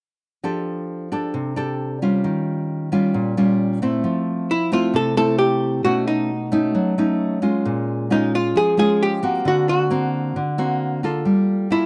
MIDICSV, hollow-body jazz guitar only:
0, 0, Header, 1, 2, 480
1, 0, Start_track
1, 0, Tempo, 450789
1, 463, Time_signature, 4, 2, 24, 8
1, 12626, End_track
2, 0, Start_track
2, 0, Title_t, "Hollow-body jazz guitar"
2, 0, Program_c, 0, 26
2, 4801, Note_on_c, 0, 64, 80
2, 5036, Note_off_c, 0, 64, 0
2, 5040, Note_on_c, 0, 65, 74
2, 5281, Note_off_c, 0, 65, 0
2, 5281, Note_on_c, 0, 69, 90
2, 5496, Note_off_c, 0, 69, 0
2, 5509, Note_on_c, 0, 69, 96
2, 5730, Note_off_c, 0, 69, 0
2, 5734, Note_on_c, 0, 67, 78
2, 6186, Note_off_c, 0, 67, 0
2, 6224, Note_on_c, 0, 66, 77
2, 6465, Note_off_c, 0, 66, 0
2, 6469, Note_on_c, 0, 63, 72
2, 7384, Note_off_c, 0, 63, 0
2, 8648, Note_on_c, 0, 63, 73
2, 8860, Note_off_c, 0, 63, 0
2, 8892, Note_on_c, 0, 65, 84
2, 9125, Note_off_c, 0, 65, 0
2, 9127, Note_on_c, 0, 68, 89
2, 9350, Note_off_c, 0, 68, 0
2, 9363, Note_on_c, 0, 68, 92
2, 9601, Note_off_c, 0, 68, 0
2, 9610, Note_on_c, 0, 67, 80
2, 10045, Note_off_c, 0, 67, 0
2, 10091, Note_on_c, 0, 66, 79
2, 10309, Note_off_c, 0, 66, 0
2, 10321, Note_on_c, 0, 66, 73
2, 11230, Note_off_c, 0, 66, 0
2, 12478, Note_on_c, 0, 64, 76
2, 12626, Note_off_c, 0, 64, 0
2, 12626, End_track
0, 0, End_of_file